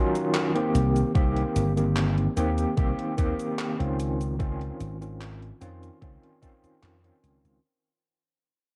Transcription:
Already playing: D#3 F#3 C#4 F4
0.15 closed hi-hat, cabasa
0.34 clap, closed hi-hat, cabasa
0.55 D#3 A#3 C4 G4, closed hi-hat
0.75 C2, closed hi-hat, cabasa
0.96 closed hi-hat, cabasa
1.15 C2 D#3 A#3 C4 G4, kick, closed hi-hat, cabasa
1.36 closed hi-hat
1.56 G1, closed hi-hat, cabasa
1.76 D#3 A#3 C4 G4, closed hi-hat, cabasa
1.96 clap, closed hi-hat, cabasa
2.18 closed hi-hat
2.36 D#2 D#3 A#3 C4 G4, closed hi-hat, cabasa
2.58 closed hi-hat, cabasa
2.76 C2 D#3 A#3 C4 G4, kick, closed hi-hat, cabasa
2.99 closed hi-hat
3.17 D#2 D#3 A#3 C4 G4, kick, closed hi-hat, cabasa
3.39 closed hi-hat, cabasa
3.59 clap, closed hi-hat, cabasa
3.79 C#2 D#3 C4 C#4 F4, closed hi-hat
4.00 closed hi-hat, cabasa
4.21 closed hi-hat, cabasa
4.39 D#3 C4 C#4 F4, kick, closed hi-hat, cabasa
4.61 closed hi-hat
4.80 G#1, closed hi-hat, cabasa
5.01 D#3 C4 C#4 F4, closed hi-hat, cabasa
5.21 clap, closed hi-hat, cabasa
5.42 closed hi-hat
5.61 F2 D#3 C4 C#4 F4, closed hi-hat, cabasa
5.83 closed hi-hat, cabasa
6.01 C#2 D#3 C4 C#4 F4, kick, closed hi-hat, cabasa
6.23 closed hi-hat
6.41 D#3 C4 C#4 F4, kick, closed hi-hat, cabasa
6.64 muted slap bass stroke, closed hi-hat, cabasa
6.83 F2, clap, closed hi-hat, cabasa
7.03 D#3 C4 C#4 F4, closed hi-hat
7.23 C#2, closed hi-hat, cabasa
7.45 C#2, closed hi-hat, cabasa

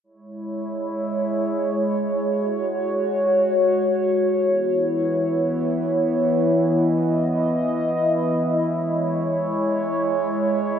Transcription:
0.04 G#3 E4 C#5
2.20 F#4
4.36 E3 B3 E4
6.53 D#5
8.69 G#3 C#5

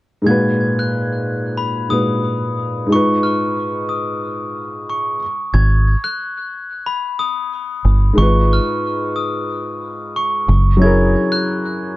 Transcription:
0.22 G#2 G#3
0.26 A#2 F#4 G#6
0.31 B4
0.79 F#6
1.57 B5
1.89 G#2 A#2 G#3 F#4 D#6
1.93 B4
2.86 G#2 G#3
2.91 D#4 F4 C#6
2.95 B4
3.23 F6
3.89 D#6
4.90 C#6
5.54 G#1 G#6
6.04 F#6
6.86 B5
7.19 D#6
7.85 G1
8.13 G#2 G#3
8.18 G#1 D#4 F4 C#6
8.22 B4
8.53 F6
9.16 D#6
10.16 C#6
10.49 F#1
10.77 F#3 C#4
10.81 E4 G#4 G#6
10.86 A#4
11.32 F#6

